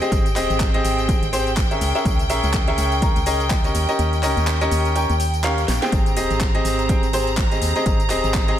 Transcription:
Already playing: G5
0.02 C4 G4 G#4 D#5, closed hi-hat, tambourine
0.12 G#1, kick, closed hi-hat, tambourine
0.26 closed hi-hat, tambourine
0.36 D#1 C4 G4 G#4 D#5, clap, open hi-hat, tambourine
0.50 G#1, closed hi-hat, tambourine
0.60 kick, clap, closed hi-hat, tambourine
0.74 C4 G4 G#4 D#5, closed hi-hat
0.85 G#1, open hi-hat, tambourine
0.99 closed hi-hat, tambourine
1.09 C4 G4 G#4 G5, kick, closed hi-hat, tambourine
1.23 G#1, closed hi-hat, tambourine
1.33 C4 G4 G#4 C5, open hi-hat, tambourine
1.47 closed hi-hat, tambourine
1.57 kick, clap, closed hi-hat, tambourine
1.71 C#4 G#4 A#4 E5, closed hi-hat, tambourine
1.81 C#2, open hi-hat, tambourine
1.95 C#4 G#4 A#4 E5, closed hi-hat, tambourine
2.05 C#2, kick, closed hi-hat, tambourine
2.19 closed hi-hat, tambourine
2.30 A#1 C#4 G#4 A#4 E5, open hi-hat, tambourine
2.43 C#2, closed hi-hat, tambourine
2.54 kick, clap, closed hi-hat, tambourine
2.68 C#4 G#4 A#4 E5, closed hi-hat
2.78 C#2, open hi-hat, tambourine
2.92 closed hi-hat, tambourine
3.02 C#4 G#4 A#4 A#5, kick, closed hi-hat, tambourine
3.16 C#2, closed hi-hat, tambourine
3.26 C#4 G#4 A#4 D#5, open hi-hat, tambourine
3.40 closed hi-hat, tambourine
3.50 kick, clap, closed hi-hat, tambourine
3.64 C#4 G4 A#4 D#5, closed hi-hat, tambourine
3.75 D#2, open hi-hat, tambourine
3.89 C#4 G4 A#4 D#5, closed hi-hat, tambourine
3.99 D#2, closed hi-hat, tambourine
4.13 closed hi-hat, tambourine
4.23 C#2 C#4 G4 A#4 D#5, clap, open hi-hat, tambourine
4.37 D#2, closed hi-hat, tambourine
4.47 clap, closed hi-hat, tambourine
4.61 C#4 G4 A#4 D#5, closed hi-hat, tambourine
4.71 D#2, open hi-hat, tambourine
4.85 closed hi-hat, tambourine
4.96 C#4 G4 A#4 G5, closed hi-hat, tambourine
5.09 D#2, closed hi-hat, tambourine
5.20 open hi-hat, tambourine
5.34 closed hi-hat, tambourine
5.44 C#4 G4 A#4 F5, clap, closed hi-hat, tambourine
5.58 closed hi-hat, tambourine
5.68 A#1, snare, open hi-hat, tambourine
5.82 C4 G4 G#4 G5, snare, closed hi-hat, tambourine
5.92 G#1 A#5, kick, closed hi-hat, tambourine
6.06 closed hi-hat, tambourine
6.17 D#1 C4 G4 G#4 D#5, open hi-hat, tambourine
6.30 G#1, closed hi-hat, tambourine
6.41 kick, clap, closed hi-hat, tambourine
6.55 C4 G4 G#4 D#5, closed hi-hat
6.65 G#1, open hi-hat, tambourine
6.79 closed hi-hat, tambourine
6.89 C4 G4 G#4 G5, kick, closed hi-hat, tambourine
7.03 G#1, closed hi-hat, tambourine
7.13 C4 G4 G#4 C5, open hi-hat, tambourine
7.27 closed hi-hat, tambourine
7.37 kick, clap, closed hi-hat, tambourine
7.51 C4 G4 G#4 D#5, closed hi-hat, tambourine
7.62 D#2, open hi-hat, tambourine
7.76 C4 G4 G#4 D#5, closed hi-hat, tambourine
7.86 G#1, kick, closed hi-hat, tambourine
8.00 closed hi-hat, tambourine
8.10 D#1 C4 G4 G#4 D#5, clap, open hi-hat, tambourine
8.24 G#1, closed hi-hat, tambourine
8.34 kick, clap, closed hi-hat, tambourine
8.48 C4 G4 G#4 D#5, closed hi-hat

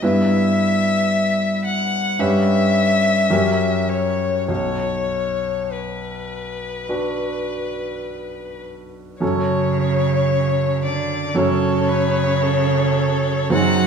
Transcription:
0.02 G2 B3 E4 B4 E5
1.65 F#5
2.19 G2 C#4 G4 B4 E5
3.30 F#2 C#4 G4 A#4
3.89 C#5
4.48 B1 C#5
5.72 B4
6.89 D4 F#4 B4
9.20 F#2 C#3 C#4 F#4 A4 C#5
10.84 D3 D5
11.35 F#2 C#3 C#4 F#4 A4 C#5
11.88 B4
12.42 A4
13.50 F#2 F#3 C4 D#4 F#4 G#4 F#5

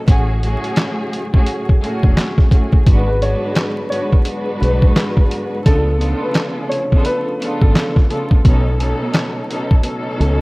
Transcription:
Already playing: A3
0.05 A1 A2 C#3 F#3 A3 C#4 F#4 G#4, kick, closed hi-hat
0.42 A2 A3 C#4 F#4 G#4, closed hi-hat
0.64 closed hi-hat
0.76 snare, clap, closed hi-hat
1.13 closed hi-hat
1.31 A2 A3 C#4 F#4 G#4, kick
1.46 closed hi-hat
1.69 kick
1.80 A2 A3 C#4 F#4 G#4, closed hi-hat
2.03 E1, kick
2.17 snare, clap, closed hi-hat
2.38 kick, snare
2.51 A2 A3 C#4 F#4 G#4, kick, closed hi-hat
2.73 kick
2.85 G#1 G#2 D3 F#3 G#3 B3 D4 F#4 B4, kick, closed hi-hat
3.08 B4
3.20 G#2 G#3 D4 F#4 B4 C#5, closed hi-hat
3.55 snare, clap, closed hi-hat
3.89 G#2 G#3 D4 F#4 B4 C#5, closed hi-hat
4.13 kick
4.25 G#2 G#3 D4 F#4 B4, closed hi-hat
4.61 B1 B4, closed hi-hat
4.82 kick
4.96 snare, clap, closed hi-hat
5.17 kick
5.31 closed hi-hat
5.64 C#2 C#3 F3 A3 B3 D4 F4 A4, kick, closed hi-hat
5.98 C#3 B3 D4 F4 A4, closed hi-hat
6.22 B4
6.34 snare, clap, closed hi-hat
6.69 C#5, closed hi-hat
6.92 C#3 B3 D4 F4 A4, kick
7.04 B4, closed hi-hat
7.40 C#3 B3 D4 F4 A4, closed hi-hat
7.62 G#1 A4, kick
7.75 snare, clap, closed hi-hat
7.96 kick, snare
8.08 C#3 B3 D4 F4 A4, closed hi-hat
8.31 kick
8.43 B1 B2 C#3 F#3 A3 B3 C#4 D#4 A4, kick, closed hi-hat
8.78 B2 B3 C#4 D#4 A4, closed hi-hat
9.13 snare, clap, closed hi-hat
9.48 B2 B3 C#4 D#4 A4, closed hi-hat
9.71 kick
9.83 B2 B3 C#4 D#4 A4, closed hi-hat
10.20 C#2, closed hi-hat

